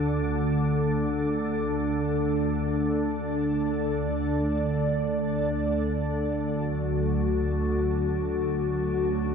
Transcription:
Already playing: synth drone D2 D3, analog synth pad D4 A4, synth texture A4
1.34 analog synth pad D5
6.53 analog synth pad F#4
8.97 analog synth pad C#5

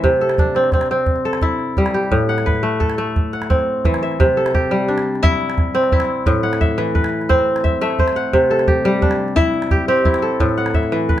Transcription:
Already playing: kora A3 C4 E5 F#5
0.04 kora C3, calabash thump
0.21 kora A4
0.29 calabash click
0.38 kora D4, calabash thump
0.55 kora C4, calabash click
0.64 calabash click
0.72 kora C4, calabash thump, calabash click
0.81 calabash click
0.91 kora C4
1.06 calabash thump
1.16 calabash click
1.25 kora A4
1.33 calabash click
1.42 kora E4, calabash thump
1.59 calabash click
1.77 kora G3, calabash thump
1.86 calabash click
1.94 kora G4
2.03 calabash click
2.11 kora A2, calabash thump
2.29 kora F#5, calabash click
2.38 calabash click
2.46 kora B4, calabash thump, calabash click
2.55 calabash click
2.63 kora A3, calabash click
2.80 kora A4, calabash thump, calabash click
2.90 calabash click
2.98 kora A3
3.07 calabash click
3.16 calabash thump
3.33 kora F#5, calabash click
3.42 calabash click
3.50 kora C4, calabash thump
3.59 calabash click
3.85 kora E3, calabash thump, calabash click
3.94 calabash click
4.03 kora E5, calabash click
4.12 calabash click
4.20 kora C3, calabash thump
4.37 kora A4, calabash click
4.46 calabash click
4.55 kora G4, calabash thump
4.71 kora G3, calabash click
4.88 kora D4
4.98 calabash click
5.15 calabash click
5.23 kora E4, calabash thump, calabash click
5.33 calabash click
5.41 calabash click
5.50 calabash click
5.58 calabash thump
5.75 kora C4, calabash click
5.84 calabash click
5.92 kora E4, calabash thump
6.00 calabash click
6.26 kora A2, calabash thump
6.43 kora F#5, calabash click
6.53 calabash click
6.61 kora E5, calabash thump
6.78 kora E3, calabash click
6.95 kora B4, calabash thump
7.04 calabash click
7.21 calabash click
7.29 kora C4 C5, calabash thump, calabash click
7.39 calabash click
7.56 calabash click
7.64 kora E5, calabash thump
7.81 kora A3 E5, calabash click
7.90 calabash click
7.99 kora C5, calabash thump
8.08 calabash click
8.16 kora F#5
8.33 kora C3, calabash thump
8.50 kora A4, calabash click
8.59 calabash click
8.68 kora G4, calabash thump
8.85 kora G3, calabash click
9.02 kora D4, calabash thump
9.11 calabash click
9.28 calabash click
9.36 kora E4, calabash thump, calabash click
9.45 calabash click
9.54 calabash click
9.62 calabash click
9.71 kora G4, calabash thump
9.88 kora C4 G4, calabash click
9.97 calabash click
10.05 kora E4, calabash thump
10.14 calabash click
10.22 kora A4
10.40 kora A2, calabash thump, calabash click
10.49 calabash click
10.58 kora F#5
10.66 calabash click
10.74 kora E5, calabash thump, calabash click
10.83 calabash click
10.92 kora E3
11.09 kora B4, calabash thump

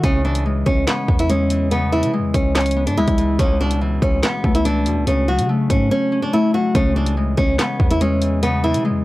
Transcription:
0.04 808-style bass C#2, harp C#3, nylon-string guitar C#4, kick, closed hi-hat
0.25 harp E3, nylon-string guitar D4
0.35 closed hi-hat
0.46 harp G#3
0.66 808-style bass C#2, nylon-string guitar C#4, kick
0.87 nylon-string guitar B3, harp C#4, snare, clap, closed hi-hat
1.08 808-style bass E2, harp B3, kick
1.19 nylon-string guitar E4, closed hi-hat
1.29 harp G#3, nylon-string guitar C#4, closed hi-hat
1.50 harp E3, closed hi-hat
1.71 harp C#3, nylon-string guitar B3, closed hi-hat
1.92 harp E3, nylon-string guitar E4
2.03 808-style bass C#3, closed hi-hat
2.13 harp G#3
2.19 808-style bass E2
2.34 808-style bass C#2, nylon-string guitar C#4, kick, closed hi-hat
2.55 nylon-string guitar C#4, harp C#4, snare, clap, closed hi-hat
2.61 closed hi-hat
2.66 closed hi-hat
2.71 closed hi-hat
2.76 harp B3
2.87 808-style bass G#2, nylon-string guitar D4, closed hi-hat
2.97 808-style bass C#2, harp G#3, nylon-string guitar E4
3.08 808-style bass C#2, kick, closed hi-hat
3.18 harp E3, closed hi-hat
3.39 808-style bass C#2, harp C#2, nylon-string guitar C#4, kick, closed hi-hat
3.60 harp B2, nylon-string guitar D4
3.71 closed hi-hat
3.81 harp E3
4.02 808-style bass C#2, nylon-string guitar C#4, kick
4.23 harp B3, nylon-string guitar B3, snare, clap, closed hi-hat
4.44 808-style bass C#2, harp A3, kick
4.55 nylon-string guitar E4, closed hi-hat
4.65 harp E3, nylon-string guitar D4, closed hi-hat
4.86 808-style bass E2, harp B2, closed hi-hat
4.97 808-style bass C#2
5.07 808-style bass C#2, harp C#3, nylon-string guitar C#4, closed hi-hat
5.28 harp F#3, nylon-string guitar F#4
5.39 808-style bass C#3, closed hi-hat
5.49 harp A3
5.70 808-style bass G#2, nylon-string guitar C#4, kick, closed hi-hat
5.91 nylon-string guitar C#4, harp C#5
6.12 harp C#4
6.22 nylon-string guitar D4
6.33 harp A3, nylon-string guitar E4
6.54 harp F#3, nylon-string guitar F#4
6.75 808-style bass C#2, harp C#3, nylon-string guitar C#4, kick, closed hi-hat
6.96 harp E3, nylon-string guitar D4
7.06 closed hi-hat
7.17 harp G#3
7.37 808-style bass C#2, nylon-string guitar C#4, kick
7.59 nylon-string guitar B3, harp C#4, snare, clap, closed hi-hat
7.80 808-style bass E2, harp B3, kick
7.91 nylon-string guitar E4, closed hi-hat
8.01 harp G#3, nylon-string guitar C#4, closed hi-hat
8.22 harp E3, closed hi-hat
8.43 harp C#3, nylon-string guitar B3, closed hi-hat
8.64 harp E3, nylon-string guitar E4
8.74 808-style bass C#3, closed hi-hat
8.85 harp G#3
8.90 808-style bass E2

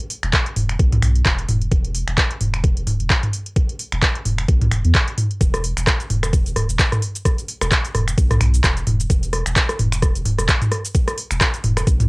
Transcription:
0.10 open hi-hat
0.23 sub bass E1, finger snap, closed hi-hat
0.33 kick, clap, closed hi-hat
0.46 closed hi-hat
0.56 sub bass E1, mid tom, open hi-hat
0.69 finger snap, closed hi-hat
0.79 sub bass B1, kick, closed hi-hat
0.92 closed hi-hat, mid tom
1.02 sub bass B1, finger snap, mid tom, open hi-hat
1.15 closed hi-hat
1.25 sub bass E1, kick, clap, closed hi-hat
1.38 closed hi-hat
1.48 sub bass E1, mid tom, open hi-hat
1.62 closed hi-hat
1.72 sub bass E1, kick, closed hi-hat
1.85 closed hi-hat
1.95 open hi-hat
2.08 sub bass E1, finger snap, closed hi-hat
2.18 kick, clap, closed hi-hat
2.31 closed hi-hat
2.41 sub bass E1, mid tom, open hi-hat
2.54 finger snap, closed hi-hat
2.64 kick, closed hi-hat
2.77 sub bass E1, closed hi-hat
2.87 sub bass D1, mid tom, open hi-hat
3.00 sub bass E1, closed hi-hat
3.10 finger snap, kick, clap, closed hi-hat
3.23 closed hi-hat, mid tom
3.33 open hi-hat
3.46 closed hi-hat
3.56 kick, closed hi-hat
3.69 closed hi-hat
3.79 open hi-hat
3.92 sub bass E1, finger snap, closed hi-hat
4.02 kick, clap, closed hi-hat
4.15 closed hi-hat
4.25 sub bass E1, mid tom, open hi-hat
4.38 finger snap, closed hi-hat
4.48 sub bass B1, kick, closed hi-hat
4.62 closed hi-hat, mid tom
4.72 sub bass E1, finger snap, mid tom, open hi-hat
4.85 sub bass E2, closed hi-hat
4.95 kick, clap, closed hi-hat
5.08 closed hi-hat
5.18 mid tom, open hi-hat
5.31 closed hi-hat
5.41 sub bass E1, kick, closed hi-hat, cabasa
5.54 cross-stick, closed hi-hat, cabasa
5.64 open hi-hat
5.77 sub bass E1, finger snap, closed hi-hat, cabasa
5.87 kick, cross-stick, clap, closed hi-hat, cabasa
6.00 closed hi-hat, cabasa
6.10 sub bass E1, mid tom, open hi-hat
6.23 finger snap, cross-stick, closed hi-hat, cabasa
6.33 kick, closed hi-hat, cabasa
6.46 sub bass E1, closed hi-hat, cabasa
6.56 sub bass D1, cross-stick, mid tom, open hi-hat
6.69 sub bass E1, closed hi-hat, cabasa
6.79 finger snap, kick, clap, closed hi-hat, cabasa
6.92 cross-stick, closed hi-hat, mid tom, cabasa
7.02 open hi-hat
7.15 closed hi-hat, cabasa
7.25 kick, cross-stick, closed hi-hat, cabasa
7.38 closed hi-hat, cabasa
7.48 open hi-hat
7.62 sub bass E1, finger snap, cross-stick, closed hi-hat, cabasa
7.72 kick, clap, closed hi-hat, cabasa
7.85 closed hi-hat, cabasa
7.95 sub bass E1, cross-stick, mid tom, open hi-hat
8.08 finger snap, closed hi-hat, cabasa
8.18 sub bass B1, kick, closed hi-hat, cabasa
8.31 cross-stick, closed hi-hat, mid tom, cabasa
8.41 sub bass B1, finger snap, mid tom, open hi-hat
8.54 closed hi-hat, cabasa
8.64 sub bass E1, kick, cross-stick, clap, closed hi-hat, cabasa
8.77 closed hi-hat, cabasa
8.87 sub bass E1, mid tom, open hi-hat
9.00 closed hi-hat, cabasa
9.10 sub bass E1, kick, closed hi-hat, cabasa
9.23 closed hi-hat, cabasa
9.33 cross-stick, open hi-hat
9.46 sub bass E1, finger snap, closed hi-hat, cabasa
9.56 kick, clap, closed hi-hat, cabasa
9.69 cross-stick, closed hi-hat, cabasa
9.79 sub bass E1, mid tom, open hi-hat
9.92 finger snap, closed hi-hat, cabasa
10.02 kick, cross-stick, closed hi-hat, cabasa
10.15 sub bass E1, closed hi-hat, cabasa
10.25 sub bass D1, mid tom, open hi-hat
10.38 sub bass E1, cross-stick, closed hi-hat, cabasa
10.48 finger snap, kick, clap, closed hi-hat, cabasa
10.62 closed hi-hat, mid tom, cabasa
10.72 cross-stick, open hi-hat
10.85 closed hi-hat, cabasa
10.95 kick, closed hi-hat, cabasa
11.08 cross-stick, closed hi-hat, cabasa
11.18 open hi-hat
11.31 sub bass E1, finger snap, closed hi-hat, cabasa
11.41 kick, cross-stick, clap, closed hi-hat, cabasa
11.54 closed hi-hat, cabasa
11.64 sub bass E1, mid tom, open hi-hat
11.77 finger snap, cross-stick, closed hi-hat, cabasa
11.87 sub bass B1, kick, closed hi-hat, cabasa
12.00 closed hi-hat, mid tom, cabasa

